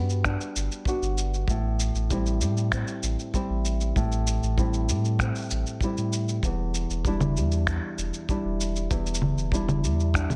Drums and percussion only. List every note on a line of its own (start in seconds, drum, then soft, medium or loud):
0.10 cabasa soft
0.24 finger snap medium
0.24 kick loud
0.24 cabasa soft
0.41 cabasa soft
0.56 cabasa medium
0.72 cabasa soft
0.85 kick medium
0.85 cabasa soft
1.03 cabasa soft
1.18 cabasa medium
1.34 cabasa soft
1.48 kick loud
1.48 cabasa soft
1.80 cabasa medium
1.95 cabasa soft
2.10 kick medium
2.10 cabasa soft
2.26 cabasa soft
2.41 cabasa medium
2.57 cabasa soft
2.72 finger snap medium
2.72 kick medium
2.72 cabasa soft
2.87 cabasa soft
3.03 cabasa medium
3.19 cabasa soft
3.34 kick medium
3.34 cabasa soft
3.65 cabasa medium
3.81 cabasa soft
3.96 kick loud
3.96 cabasa soft
4.12 cabasa soft
4.27 cabasa medium
4.43 cabasa soft
4.58 kick loud
4.58 cabasa soft
4.74 cabasa soft
4.89 cabasa medium
5.05 cabasa soft
5.19 finger snap medium
5.19 kick medium
5.19 cabasa soft
5.35 cabasa soft
5.38 cabasa soft
5.40 cabasa soft
5.42 cabasa soft
5.44 cabasa soft
5.47 cabasa soft
5.49 cabasa soft
5.51 cabasa medium
5.66 cabasa soft
5.81 kick medium
5.81 cabasa soft
5.97 cabasa soft
6.13 cabasa medium
6.28 cabasa soft
6.43 kick loud
6.43 cabasa soft
6.75 cabasa medium
6.90 cabasa soft
7.05 kick medium
7.05 cabasa soft
7.20 low conga medium
7.20 cabasa soft
7.37 cabasa medium
7.52 cabasa soft
7.67 finger snap medium
7.67 kick loud
7.67 cabasa soft
7.98 cabasa medium
8.14 cabasa soft
8.29 kick medium
8.29 cabasa soft
8.61 cabasa medium
8.76 cabasa soft
8.91 kick loud
8.91 cabasa soft
9.06 cabasa soft
9.14 cabasa medium
9.22 low conga medium
9.38 cabasa soft
9.52 kick medium
9.52 cabasa soft
9.68 low conga medium
9.68 cabasa soft
9.84 cabasa medium
10.00 cabasa soft
10.14 finger snap medium
10.14 kick loud
10.14 cabasa soft
10.30 low conga medium
10.30 cabasa soft
10.32 low conga medium